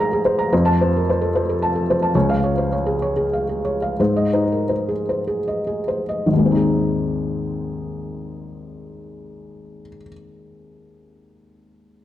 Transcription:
Already playing: G#2 D#4 G#4 A#4 C5
0.00 A#5
0.13 G#4
0.25 C5
0.39 A#5
0.53 F2 C5
0.65 A5
0.81 C5
0.96 A#4
1.09 C5
1.22 A4
1.35 C5
1.49 A4
1.62 A5
1.75 A4
1.90 C5
2.02 A5
2.15 C#2 C#5
2.29 F5
2.44 C#5
2.58 C5
2.72 C#5
2.86 G#4
3.02 C#5
3.16 G#4
3.33 F5
3.49 G#4
3.65 C#5
3.82 F5
3.99 G#2 C5
4.16 D#5
4.33 D#4 C5
4.52 A#4
4.69 C5
4.88 G#4
5.09 C5
5.27 G#4
5.48 D#5
5.67 G#4
5.88 C5
6.09 D#5
6.26 G#1
6.33 D#2
6.39 G#3
6.46 C4
6.52 D#4
6.57 G#4

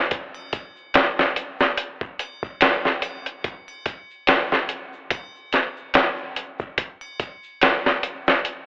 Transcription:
0.11 kick, closed hi-hat, shaker
0.34 triangle, shaker
0.53 kick, closed hi-hat, shaker
0.76 shaker
0.94 snare, closed hi-hat, shaker
1.18 snare, shaker
1.36 closed hi-hat, shaker
1.59 snare, shaker
1.78 closed hi-hat, shaker
2.01 kick, shaker
2.20 closed hi-hat, triangle, shaker
2.43 kick, shaker
2.61 snare, closed hi-hat, shaker
2.85 snare, shaker
3.02 closed hi-hat, triangle, shaker
3.26 closed hi-hat, shaker
3.44 kick, closed hi-hat, shaker
3.68 triangle, shaker
3.86 kick, closed hi-hat, shaker
4.11 shaker
4.27 snare, closed hi-hat
4.52 snare, shaker
4.69 closed hi-hat, shaker
4.93 shaker
5.10 kick, closed hi-hat, triangle, shaker
5.35 shaker
5.53 snare, closed hi-hat, shaker
5.77 shaker
5.94 snare, closed hi-hat, shaker
6.17 shaker
6.36 closed hi-hat, shaker
6.59 kick, shaker
6.78 kick, closed hi-hat, shaker
7.01 triangle, shaker
7.20 kick, closed hi-hat, shaker
7.43 shaker
7.61 snare, closed hi-hat, shaker
7.85 snare, shaker
8.03 closed hi-hat, shaker
8.27 snare, shaker
8.45 closed hi-hat, shaker

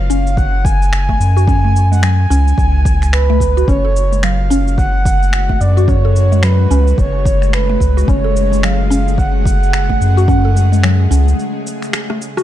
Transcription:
Already playing: F#1 F5
0.10 C#4, cabasa
0.27 cabasa
0.37 F#5, kick, cabasa
0.64 G#5, kick, cabasa
0.82 cabasa
0.93 finger snap, cabasa
1.09 A3, kick
1.20 F#2, cabasa
1.37 F#4, cabasa
1.47 C#4 G#5, kick, cabasa
1.65 A3
1.76 cabasa
1.92 G#3 F#5, cabasa
2.02 F#3 G#5, finger snap, cabasa
2.30 C#2 C#4, cabasa
2.48 cabasa
2.58 C#2, kick, cabasa
2.85 kick, cabasa
3.02 finger snap, cabasa
3.13 B4, finger snap, cabasa
3.30 A3
3.40 kick, cabasa
3.57 F#4, cabasa
3.68 F#1 C#3 G#3 A3 C#4 F#4 C#5, kick, cabasa
3.85 A4
3.96 cabasa
4.12 G#3, cabasa
4.23 F#3 F5, finger snap, cabasa
4.50 C#4, cabasa
4.68 cabasa
4.78 F#5, kick, cabasa
5.05 kick, cabasa
5.23 cabasa
5.33 finger snap, cabasa
5.49 A3, kick
5.61 F#2 D5, cabasa
5.77 F#4, cabasa
5.88 C#4 C#5, kick, cabasa
6.05 A4
6.16 cabasa
6.32 G#3, cabasa
6.43 F#3 B4, finger snap, cabasa
6.71 C#2 C#4, cabasa
6.87 cabasa
6.98 F#1 C#5, kick, cabasa
7.25 kick, cabasa
7.42 finger snap, cabasa
7.53 B4, finger snap, cabasa
7.70 A3
7.80 C#2, kick, cabasa
7.97 F#4, cabasa
8.08 F#1 C#4 G#4 C#5, kick, cabasa
8.24 A4
8.36 cabasa
8.52 G#3, cabasa
8.63 F#3 F5, finger snap, cabasa
8.90 C#4, cabasa
9.08 cabasa
9.18 F#5, kick, cabasa
9.45 kick, cabasa
9.63 cabasa
9.73 finger snap, cabasa
9.89 A3, kick
10.01 F#2, cabasa
10.17 F#4, cabasa
10.28 C#4, kick, cabasa
10.45 A4
10.57 cabasa
10.72 G#3, cabasa
10.83 F#3, finger snap, cabasa
11.11 C#2 C#4, cabasa
11.28 cabasa
11.39 cabasa
11.67 cabasa
11.82 finger snap, cabasa
11.93 finger snap, cross-stick, cabasa
12.10 A3, cross-stick
12.22 cabasa
12.37 F#4, cross-stick, cabasa

